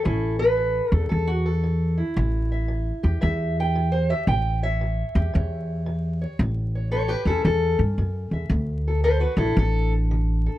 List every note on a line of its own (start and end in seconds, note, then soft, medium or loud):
0.04 0.79 A1 medium
0.04 0.54 A2 medium
0.04 3.06 C#4 soft
0.04 0.39 E4 soft
0.04 0.39 A4 soft
0.39 0.91 A4 soft
0.39 0.91 B4 loud
0.57 1.06 A2 medium
0.91 1.08 E2 medium
0.91 1.09 A4 loud
1.09 2.01 E2 medium
1.09 1.59 A2 medium
1.09 1.27 A4 medium
1.27 1.45 F#4 medium
1.46 1.99 A4 medium
1.64 2.13 A2 medium
1.97 3.91 E4 soft
2.16 2.90 A1 medium
2.16 2.66 A2 medium
2.52 3.21 E5 soft
2.68 3.18 A2 medium
3.03 3.20 E2 medium
3.03 4.11 G4 soft
3.21 4.12 E2 medium
3.21 3.71 A2 medium
3.21 3.57 E5 medium
3.60 3.94 G5 medium
3.75 4.25 A2 medium
3.92 4.10 C5 medium
4.10 4.31 G4 soft
4.10 4.28 E5 medium
4.27 5.01 A1 medium
4.27 4.77 A2 medium
4.27 4.63 G5 medium
4.63 5.34 C#5 soft
4.63 6.22 E5 medium
4.81 5.30 A2 medium
5.15 5.31 E2 medium
5.15 6.38 G4 soft
5.33 6.24 E2 medium
5.33 5.83 A2 medium
5.33 6.20 C#5 soft
5.86 6.36 A2 medium
6.21 6.38 C#5 soft
6.39 7.13 A1 loud
6.39 6.89 A2 medium
6.75 6.91 C#5 soft
6.91 7.42 A2 medium
6.91 7.10 A4 medium
6.91 7.09 C#5 medium
7.08 7.27 G4 medium
7.08 7.26 B4 medium
7.25 7.42 E2 medium
7.25 8.49 C#4 soft
7.25 7.45 E4 medium
7.25 7.44 A4 medium
7.45 7.74 E2 medium
7.45 7.95 A2 medium
7.45 7.79 A4 medium
7.79 7.96 G2 medium
7.98 8.29 F#2 medium
7.98 8.48 A2 medium
8.31 8.49 E2 medium
8.31 8.49 E5 soft
8.50 9.24 D2 medium
8.50 9.00 D3 medium
8.88 9.03 A4 soft
9.04 9.54 D3 medium
9.04 9.22 A4 medium
9.04 9.21 C5 medium
9.20 9.39 F#4 medium
9.20 9.37 B4 medium
9.37 9.53 A1 medium
9.37 9.56 E4 medium
9.37 9.56 A4 medium
9.41 10.58 D4 soft
9.57 10.46 A1 loud
9.57 10.07 D3 medium
9.57 9.92 A4 loud
10.11 10.58 D3 medium
10.46 10.58 A4 soft